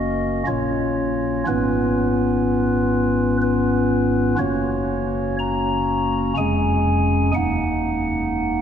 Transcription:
pipe organ
Already playing: F#1 F#2 A#3 C#4 F#4 D#5
0.47 A#1 A#2 A#3 C#4 F4 C#5
1.47 G#1 G#2 B3 C#4 F4 B4
3.42 B4
4.38 F#1 F#2 A#3 C#4 F#4 C#5
5.39 A#5
6.37 F1 F2 G#3 C#4 G#4 G#5
7.34 D#1 D#2 A#3 D#4 F#5

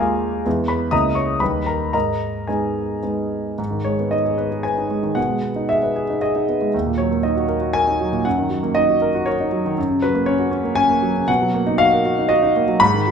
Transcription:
grand piano
Already playing: D#2 G#3 G#4 A#4 D5 F5 G#5 A#5 D6
0.00 A#3 F4
0.45 E2 G#3 B3 E4
0.68 B4 B5
0.91 C#2 A#3 E4 D#5 A#5 D#6
1.15 C#5 C#6
1.40 D#2 G3 A#3 D#4 B4 B5
1.66 A#4 A#5
1.93 G#2 A#4 D#5 A#5
2.47 G#3 B3 D#4 G#4 D#5 G#5
3.03 G#3 B3 D#4
3.58 G#2
3.71 D#3
3.84 G#3 C#5
3.99 B3
4.11 D#4 D#5
4.25 G#4
4.38 B4
4.51 G#4
4.63 B4 G#5
4.78 D#4
4.91 G#3
5.03 D#3
5.15 B2 F#5
5.29 G#3
5.43 B3
5.56 D#4
5.69 G#4 E5
5.83 B4
5.96 G#4
6.10 D#4
6.21 G#4 D#5
6.36 D#4
6.49 B3
6.61 G#3
6.74 D#2
6.87 A#2
6.98 F#3 C#5
7.12 A#3
7.23 D#4 D#5
7.36 F#4
7.48 A#4
7.61 F#4
7.73 A#4 G#5
7.87 D#4
8.00 F#3
8.12 A#2
8.25 F#2 F#5
8.38 D#3
8.50 F#3
8.63 A#3
8.75 D#4 D#5
8.89 F#4
9.02 A#4
9.15 F#4
9.26 A#4 C#5
9.40 D#4
9.52 F#3
9.65 D#3
9.78 F#2
9.90 C#3
10.02 F#3 B4
10.15 A#3
10.26 C#4 C#5
10.39 F#4
10.51 C#4
10.64 A#3
10.75 C#4 G#5
10.89 A#3
11.02 F#3
11.16 C#3
11.28 B2 F#5
11.42 F#3
11.54 A#3
11.67 D#4
11.78 F#4 F5
11.93 A#4
12.05 F#4
12.18 D#4
12.29 F#4 D#5
12.42 D#4
12.56 A#3
12.68 F#3
12.80 G#2 B5
12.94 D#3
13.07 F#3

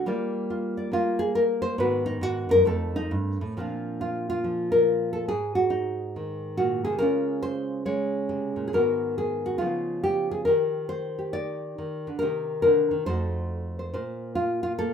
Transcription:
nylon-string guitar
0.06 G3 A#3 F4 D5
0.50 F4
0.77 D5
0.91 A#3 F4
1.19 G#4
1.35 A#4
1.62 C5
1.78 G#2 D#3 B3 F#4 B4
2.06 D#4
2.21 G#2 F#4
2.49 F#2 A#4
2.65 F2 A3 C4 D#4 A4
2.96 D#4
3.11 G2
3.41 A2
3.57 A#2 F3 C4 D4 F4
4.01 F4
4.30 F4
4.44 F3
4.72 A#4
5.13 A4
5.28 G#2 G#4
5.55 F#4
5.70 D#4
6.16 D#3
6.57 A#2 F#4
6.85 C3 G#4
6.99 C#3 G#3 C#4 F4 A#4
7.43 C5
7.86 G#3 C#5
8.29 C3
8.56 A#2
8.68 G#4
8.73 G#2 D#3 B3 F#4 A#4
9.18 G#4
9.46 F#4
9.58 C#3 F3 B3 D#4 F4
10.04 G4
10.31 G#4
10.45 D#3 D#4 G4 A#4
10.89 C5
11.19 G4
11.33 D#4 D5
11.78 D#3
12.07 D3
12.19 C3 D#3 D#4 A#4
12.23 G4
12.62 D3 A#4
12.91 D#3
13.06 F2 A3 D#4 F#4 C5
13.79 C5
13.94 A#2 C5
14.35 F4
14.63 F4
14.78 A#3 A4

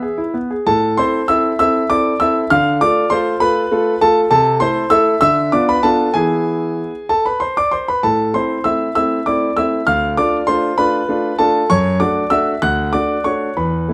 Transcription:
grand piano
Already playing: B4 E5
0.02 G#4
0.18 E4
0.34 B3
0.51 G#4
0.67 A2 A4 A5
0.97 C4 E4 A4 C5 C6
1.28 C4 E4 A4 E5 E6
1.59 C4 E4 A4 E5 E6
1.90 C4 E4 A4 D5 D6
2.20 C4 E4 A4 E5 E6
2.50 D3 F5 F6
2.81 A3 F4 A4 D5 D6
3.10 A3 F4 A4 C5 C6
3.40 A3 F4 A4 B4 B5
3.72 A3 F4 A4
4.01 A3 F4 A4 A5
4.31 C3 A4 A5
4.60 A3 E4 A4 C5 C6
4.90 A3 E4 A4 E5 E6
5.21 D3 E5 E6
5.52 B3 D4 F4 D5 D6
5.69 B4 B5
5.83 B3 D4 F4 A4 A5
6.14 E3 B3 E4 G#4 G#5
7.09 A4 A5
7.26 B4 B5
7.40 C5 C6
7.57 D5 D6
7.71 C5 C6
7.88 B4 B5
8.03 A2 A4 A5
8.34 A3 C4 E4 C5 C6
8.64 A3 C4 E4 E5 E6
8.95 A3 C4 E4 E5 E6
9.26 A3 C4 E4 D5 D6
9.57 A3 C4 E4 E5 E6
9.87 D2 F5 F6
10.17 A3 D4 F4 D5 D6
10.47 A3 D4 F4 C5 C6
10.78 A3 D4 F4 B4 B5
11.09 A3 D4 F4
11.39 A3 D4 F4 A4 A5
11.70 F#2 C#5 C#6
12.00 A3 D4 F#4 D5 D6
12.30 A3 D4 F#4 E5 E6
12.62 D2 F#5 F#6
12.93 A3 D4 F#4 D5 D6
13.24 A3 D4 F#4 C#5 C#6
13.57 E2 B4 B5
13.89 A3 B3 E4

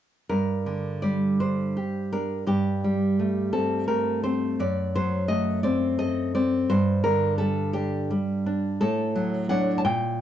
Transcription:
nylon-string guitar
0.29 G2 A#4
0.66 D3
1.02 G3 D5
1.40 D4 C5
1.77 G4
2.13 D4 A#4
2.47 G2 G4
2.84 G3
3.19 A3
3.53 C4 A4
3.88 A3 A#4
4.24 C4 C5
4.60 F#2 D5
4.96 F#3 C5
5.28 A3 D#5
5.63 C4 D5
5.99 A4 D#5
6.35 C4 D5
6.70 G2 C5
7.04 D3 A#4
7.38 G3 A4
7.73 D4 G4
8.10 G3
8.46 D4
8.81 A2 A4
9.16 F#3
9.49 F#3 D4 F#5
9.78 A5
9.85 A#2 G5

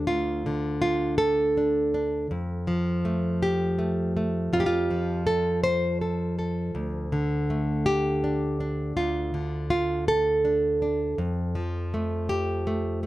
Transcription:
nylon-string guitar
Already playing: D3 A3
0.07 D2 F4
0.46 D3
0.82 F4
1.18 A4
1.57 D4
1.94 D4
2.31 F2
2.67 F3
3.05 A3
3.43 G4
3.79 A3
4.17 A3
4.53 F2 F4
4.60 G4
4.66 F4
4.90 F3
5.27 A4
5.64 C5
6.01 A4
6.39 A4
6.75 D2
7.12 D3
7.50 A3
7.86 G4
8.24 D4
8.60 D4
8.96 D2 F4
9.34 D3
9.70 F4
10.08 A4
10.45 D4
10.82 D4
11.18 F2
11.55 F3
11.94 A3
12.29 G4
12.67 A3
13.03 A3

